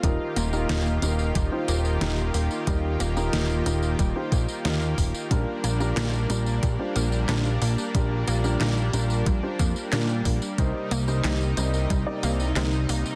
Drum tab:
HH |x-x-x-x-x-x-x-o-|x-x-x-x-x-x-x-o-|x-x-x-x-x-x-x-o-|x-x-x-x-x-x-x-o-|
TB |x-xxxxxxx-xxxxxx|x-xxxxxxx-xxxxxx|x-xxxxxxx-xxxxxx|x-xxxxxxx-xxxxxx|
CP |----------------|----------------|----x-------x---|----x-------x---|
SD |----o-------o---|----o-------o---|----o-------o---|----o-------o---|
BD |o-------o-------|o-------o-o---o-|o-------o-------|o-------o-o---o-|

HH |x-x-x-x-x-x-x-o-|
TB |x-xxxxxxx-xxxxxx|
CP |----x-------x---|
SD |----o-------o---|
BD |o-------o-------|